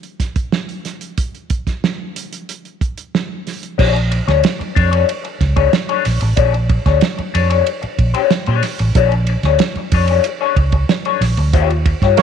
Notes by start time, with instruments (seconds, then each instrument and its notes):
0.03 closed hi-hat
0.20 kick, snare, closed hi-hat
0.36 kick, closed hi-hat
0.52 snare
0.69 closed hi-hat
0.85 snare, closed hi-hat
1.01 closed hi-hat
1.18 kick, closed hi-hat
1.35 closed hi-hat
1.50 kick, closed hi-hat
1.67 kick, snare, closed hi-hat
1.84 snare
2.16 closed hi-hat
2.33 closed hi-hat
2.49 closed hi-hat
2.65 closed hi-hat
2.81 kick, closed hi-hat
2.98 closed hi-hat
3.15 snare
3.47 snare, open hi-hat
3.63 closed hi-hat
3.78 fingered electric bass A#1, clean electric guitar D4 G#4 C#5, kick, crash
3.95 muted clean electric guitar stroke, ride
4.11 muted clean electric guitar stroke, ride
4.28 fingered electric bass D2, clean electric guitar D4 G#4 C#5, snare, ride
4.43 muted clean electric guitar stroke, snare, ride
4.59 muted clean electric guitar stroke, muted fingered electric bass stroke, ride
4.75 fingered electric bass F2, clean electric guitar D4 G#4 C#5, kick, ride
4.91 clean electric guitar D4 G#4 C#5, ride
5.08 muted clean electric guitar stroke, ride
5.24 muted clean electric guitar stroke, ride
5.40 fingered electric bass C#2, kick, snare, ride
5.56 clean electric guitar D4 G#4 C#5, kick, ride
5.72 muted clean electric guitar stroke, snare, ride
5.89 clean electric guitar D4 G#4 C#5, ride
6.05 fingered electric bass A#1, muted clean electric guitar stroke, snare, open hi-hat, ride
6.21 fingered electric bass A1, muted clean electric guitar stroke, ride
6.37 fingered electric bass A#1, clean electric guitar D4 G#4 C#5, kick, hi-hat pedal, ride
6.53 muted clean electric guitar stroke, ride
6.69 muted clean electric guitar stroke, kick, ride
6.86 fingered electric bass D2, clean electric guitar D4 G#4 C#5, kick, snare, ride
7.01 snare, ride
7.18 muted clean electric guitar stroke, muted fingered electric bass stroke, ride
7.34 fingered electric bass F2, clean electric guitar D4 G#4 C#5, ride
7.50 clean electric guitar D4 G#4 C#5, ride
7.66 muted clean electric guitar stroke, ride
7.82 muted clean electric guitar stroke, muted fingered electric bass stroke, ride
7.99 fingered electric bass A#1, kick, ride
8.14 clean electric guitar D4 G#4 C#5, ride
8.30 muted clean electric guitar stroke, snare, ride
8.46 fingered electric bass A#2, clean electric guitar D4 G#4 C#5, ride
8.63 muted clean electric guitar stroke, snare, open hi-hat, ride
8.79 fingered electric bass A1, muted clean electric guitar stroke, ride
8.95 fingered electric bass A#1, clean electric guitar D4 G#4 C#5, kick, hi-hat pedal, ride
9.12 muted clean electric guitar stroke, ride
9.27 muted clean electric guitar stroke, ride
9.43 fingered electric bass D2, clean electric guitar D4 G#4 C#5, snare, ride
9.59 muted clean electric guitar stroke, snare, ride
9.75 muted fingered electric bass stroke, muted clean electric guitar stroke, ride
9.92 fingered electric bass F2, clean electric guitar D4 G#4 C#5, kick, open hi-hat, ride
10.08 clean electric guitar D4 G#4 C#5, ride
10.24 muted clean electric guitar stroke, hi-hat pedal, ride
10.41 clean electric guitar D4 G#4 C#5
10.56 fingered electric bass C#2, muted clean electric guitar stroke, kick, ride
10.72 muted clean electric guitar stroke, kick, ride
10.89 muted clean electric guitar stroke, snare, ride
11.05 clean electric guitar D4 G#4 C#5, ride
11.21 fingered electric bass A#1, muted clean electric guitar stroke, snare, open hi-hat, ride
11.37 fingered electric bass D2, muted clean electric guitar stroke, ride
11.53 fingered electric bass D#2, clean electric guitar F4 G4 C#5, kick, hi-hat pedal, ride
11.70 muted clean electric guitar stroke, ride
11.86 muted clean electric guitar stroke, kick, ride
12.02 fingered electric bass G2, clean electric guitar F4 G4 C#5, kick, snare, ride
12.17 horn section A#3 G4 C#5, snare, ride